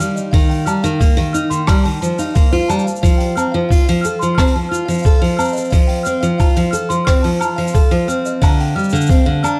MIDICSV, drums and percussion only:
0, 0, Header, 1, 2, 480
1, 0, Start_track
1, 0, Tempo, 674157
1, 236, Time_signature, 4, 2, 24, 8
1, 6832, End_track
2, 0, Start_track
2, 0, Title_t, "Drums"
2, 3, Note_on_c, 9, 82, 76
2, 74, Note_off_c, 9, 82, 0
2, 120, Note_on_c, 9, 82, 58
2, 191, Note_off_c, 9, 82, 0
2, 234, Note_on_c, 9, 36, 95
2, 234, Note_on_c, 9, 82, 49
2, 238, Note_on_c, 9, 46, 72
2, 305, Note_off_c, 9, 82, 0
2, 306, Note_off_c, 9, 36, 0
2, 309, Note_off_c, 9, 46, 0
2, 362, Note_on_c, 9, 46, 47
2, 433, Note_off_c, 9, 46, 0
2, 479, Note_on_c, 9, 77, 66
2, 480, Note_on_c, 9, 82, 83
2, 551, Note_off_c, 9, 77, 0
2, 551, Note_off_c, 9, 82, 0
2, 600, Note_on_c, 9, 82, 48
2, 671, Note_off_c, 9, 82, 0
2, 715, Note_on_c, 9, 36, 94
2, 719, Note_on_c, 9, 82, 48
2, 721, Note_on_c, 9, 46, 64
2, 787, Note_off_c, 9, 36, 0
2, 791, Note_off_c, 9, 82, 0
2, 792, Note_off_c, 9, 46, 0
2, 837, Note_on_c, 9, 46, 49
2, 909, Note_off_c, 9, 46, 0
2, 959, Note_on_c, 9, 82, 88
2, 1030, Note_off_c, 9, 82, 0
2, 1080, Note_on_c, 9, 82, 58
2, 1152, Note_off_c, 9, 82, 0
2, 1192, Note_on_c, 9, 37, 71
2, 1192, Note_on_c, 9, 46, 66
2, 1193, Note_on_c, 9, 77, 79
2, 1194, Note_on_c, 9, 82, 45
2, 1197, Note_on_c, 9, 36, 105
2, 1263, Note_off_c, 9, 37, 0
2, 1263, Note_off_c, 9, 46, 0
2, 1265, Note_off_c, 9, 77, 0
2, 1265, Note_off_c, 9, 82, 0
2, 1268, Note_off_c, 9, 36, 0
2, 1319, Note_on_c, 9, 46, 52
2, 1390, Note_off_c, 9, 46, 0
2, 1446, Note_on_c, 9, 82, 83
2, 1517, Note_off_c, 9, 82, 0
2, 1558, Note_on_c, 9, 82, 60
2, 1562, Note_on_c, 9, 46, 42
2, 1629, Note_off_c, 9, 82, 0
2, 1633, Note_off_c, 9, 46, 0
2, 1675, Note_on_c, 9, 46, 73
2, 1678, Note_on_c, 9, 36, 94
2, 1678, Note_on_c, 9, 82, 51
2, 1746, Note_off_c, 9, 46, 0
2, 1749, Note_off_c, 9, 36, 0
2, 1749, Note_off_c, 9, 82, 0
2, 1797, Note_on_c, 9, 46, 49
2, 1869, Note_off_c, 9, 46, 0
2, 1921, Note_on_c, 9, 77, 66
2, 1923, Note_on_c, 9, 82, 70
2, 1985, Note_off_c, 9, 82, 0
2, 1985, Note_on_c, 9, 82, 56
2, 1993, Note_off_c, 9, 77, 0
2, 2046, Note_off_c, 9, 82, 0
2, 2046, Note_on_c, 9, 82, 49
2, 2104, Note_off_c, 9, 82, 0
2, 2104, Note_on_c, 9, 82, 37
2, 2158, Note_on_c, 9, 36, 94
2, 2163, Note_on_c, 9, 46, 73
2, 2171, Note_off_c, 9, 82, 0
2, 2171, Note_on_c, 9, 82, 65
2, 2229, Note_off_c, 9, 36, 0
2, 2234, Note_off_c, 9, 46, 0
2, 2242, Note_off_c, 9, 82, 0
2, 2281, Note_on_c, 9, 46, 53
2, 2353, Note_off_c, 9, 46, 0
2, 2404, Note_on_c, 9, 77, 63
2, 2404, Note_on_c, 9, 82, 82
2, 2475, Note_off_c, 9, 77, 0
2, 2475, Note_off_c, 9, 82, 0
2, 2637, Note_on_c, 9, 36, 90
2, 2646, Note_on_c, 9, 82, 42
2, 2647, Note_on_c, 9, 46, 68
2, 2709, Note_off_c, 9, 36, 0
2, 2717, Note_off_c, 9, 82, 0
2, 2718, Note_off_c, 9, 46, 0
2, 2764, Note_on_c, 9, 46, 56
2, 2835, Note_off_c, 9, 46, 0
2, 2881, Note_on_c, 9, 82, 85
2, 2952, Note_off_c, 9, 82, 0
2, 3005, Note_on_c, 9, 82, 54
2, 3076, Note_off_c, 9, 82, 0
2, 3117, Note_on_c, 9, 36, 96
2, 3117, Note_on_c, 9, 77, 75
2, 3118, Note_on_c, 9, 46, 74
2, 3122, Note_on_c, 9, 37, 70
2, 3122, Note_on_c, 9, 82, 45
2, 3184, Note_off_c, 9, 46, 0
2, 3184, Note_on_c, 9, 46, 54
2, 3189, Note_off_c, 9, 36, 0
2, 3189, Note_off_c, 9, 77, 0
2, 3193, Note_off_c, 9, 37, 0
2, 3193, Note_off_c, 9, 82, 0
2, 3255, Note_off_c, 9, 46, 0
2, 3372, Note_on_c, 9, 82, 80
2, 3443, Note_off_c, 9, 82, 0
2, 3484, Note_on_c, 9, 82, 53
2, 3489, Note_on_c, 9, 46, 43
2, 3514, Note_off_c, 9, 82, 0
2, 3514, Note_on_c, 9, 82, 42
2, 3547, Note_off_c, 9, 82, 0
2, 3547, Note_on_c, 9, 82, 33
2, 3561, Note_off_c, 9, 46, 0
2, 3577, Note_off_c, 9, 82, 0
2, 3577, Note_on_c, 9, 82, 30
2, 3596, Note_on_c, 9, 36, 101
2, 3600, Note_off_c, 9, 82, 0
2, 3600, Note_on_c, 9, 82, 50
2, 3605, Note_on_c, 9, 46, 61
2, 3667, Note_off_c, 9, 36, 0
2, 3671, Note_off_c, 9, 82, 0
2, 3676, Note_off_c, 9, 46, 0
2, 3730, Note_on_c, 9, 46, 54
2, 3801, Note_off_c, 9, 46, 0
2, 3836, Note_on_c, 9, 77, 75
2, 3842, Note_on_c, 9, 82, 75
2, 3872, Note_off_c, 9, 82, 0
2, 3872, Note_on_c, 9, 82, 61
2, 3902, Note_off_c, 9, 82, 0
2, 3902, Note_on_c, 9, 82, 54
2, 3907, Note_off_c, 9, 77, 0
2, 3933, Note_off_c, 9, 82, 0
2, 3933, Note_on_c, 9, 82, 43
2, 3962, Note_off_c, 9, 82, 0
2, 3962, Note_on_c, 9, 82, 36
2, 3967, Note_off_c, 9, 82, 0
2, 3967, Note_on_c, 9, 82, 57
2, 3989, Note_off_c, 9, 82, 0
2, 3989, Note_on_c, 9, 82, 30
2, 4020, Note_off_c, 9, 82, 0
2, 4020, Note_on_c, 9, 82, 24
2, 4055, Note_off_c, 9, 82, 0
2, 4055, Note_on_c, 9, 82, 22
2, 4075, Note_on_c, 9, 36, 91
2, 4078, Note_off_c, 9, 82, 0
2, 4078, Note_on_c, 9, 82, 47
2, 4079, Note_on_c, 9, 46, 73
2, 4147, Note_off_c, 9, 36, 0
2, 4149, Note_off_c, 9, 82, 0
2, 4150, Note_off_c, 9, 46, 0
2, 4191, Note_on_c, 9, 46, 54
2, 4262, Note_off_c, 9, 46, 0
2, 4310, Note_on_c, 9, 82, 69
2, 4381, Note_off_c, 9, 82, 0
2, 4437, Note_on_c, 9, 82, 51
2, 4508, Note_off_c, 9, 82, 0
2, 4554, Note_on_c, 9, 77, 65
2, 4555, Note_on_c, 9, 36, 86
2, 4555, Note_on_c, 9, 82, 42
2, 4556, Note_on_c, 9, 46, 66
2, 4626, Note_off_c, 9, 77, 0
2, 4626, Note_off_c, 9, 82, 0
2, 4627, Note_off_c, 9, 36, 0
2, 4627, Note_off_c, 9, 46, 0
2, 4672, Note_on_c, 9, 46, 50
2, 4743, Note_off_c, 9, 46, 0
2, 4795, Note_on_c, 9, 82, 81
2, 4866, Note_off_c, 9, 82, 0
2, 4919, Note_on_c, 9, 82, 52
2, 4990, Note_off_c, 9, 82, 0
2, 5033, Note_on_c, 9, 37, 69
2, 5035, Note_on_c, 9, 46, 82
2, 5036, Note_on_c, 9, 36, 88
2, 5041, Note_on_c, 9, 82, 50
2, 5104, Note_off_c, 9, 37, 0
2, 5107, Note_off_c, 9, 36, 0
2, 5107, Note_off_c, 9, 46, 0
2, 5112, Note_off_c, 9, 82, 0
2, 5154, Note_on_c, 9, 46, 61
2, 5225, Note_off_c, 9, 46, 0
2, 5275, Note_on_c, 9, 77, 75
2, 5279, Note_on_c, 9, 82, 81
2, 5346, Note_off_c, 9, 77, 0
2, 5351, Note_off_c, 9, 82, 0
2, 5402, Note_on_c, 9, 46, 45
2, 5464, Note_on_c, 9, 82, 53
2, 5473, Note_off_c, 9, 46, 0
2, 5515, Note_on_c, 9, 36, 87
2, 5517, Note_off_c, 9, 82, 0
2, 5517, Note_on_c, 9, 46, 73
2, 5517, Note_on_c, 9, 82, 44
2, 5586, Note_off_c, 9, 36, 0
2, 5588, Note_off_c, 9, 46, 0
2, 5588, Note_off_c, 9, 82, 0
2, 5637, Note_on_c, 9, 46, 49
2, 5708, Note_off_c, 9, 46, 0
2, 5762, Note_on_c, 9, 82, 77
2, 5833, Note_off_c, 9, 82, 0
2, 5878, Note_on_c, 9, 82, 56
2, 5949, Note_off_c, 9, 82, 0
2, 5995, Note_on_c, 9, 36, 97
2, 5997, Note_on_c, 9, 46, 72
2, 6003, Note_on_c, 9, 82, 44
2, 6005, Note_on_c, 9, 77, 86
2, 6066, Note_off_c, 9, 36, 0
2, 6068, Note_off_c, 9, 46, 0
2, 6074, Note_off_c, 9, 82, 0
2, 6076, Note_off_c, 9, 77, 0
2, 6124, Note_on_c, 9, 46, 56
2, 6196, Note_off_c, 9, 46, 0
2, 6255, Note_on_c, 9, 82, 34
2, 6292, Note_off_c, 9, 82, 0
2, 6292, Note_on_c, 9, 82, 41
2, 6332, Note_off_c, 9, 82, 0
2, 6332, Note_on_c, 9, 82, 44
2, 6369, Note_off_c, 9, 82, 0
2, 6369, Note_on_c, 9, 82, 45
2, 6372, Note_off_c, 9, 82, 0
2, 6372, Note_on_c, 9, 82, 51
2, 6414, Note_off_c, 9, 82, 0
2, 6414, Note_on_c, 9, 82, 60
2, 6452, Note_off_c, 9, 82, 0
2, 6452, Note_on_c, 9, 82, 64
2, 6475, Note_on_c, 9, 36, 89
2, 6481, Note_on_c, 9, 46, 74
2, 6482, Note_off_c, 9, 82, 0
2, 6482, Note_on_c, 9, 82, 40
2, 6546, Note_off_c, 9, 36, 0
2, 6552, Note_off_c, 9, 46, 0
2, 6553, Note_off_c, 9, 82, 0
2, 6724, Note_on_c, 9, 77, 86
2, 6725, Note_on_c, 9, 82, 85
2, 6795, Note_off_c, 9, 77, 0
2, 6796, Note_off_c, 9, 82, 0
2, 6832, End_track
0, 0, End_of_file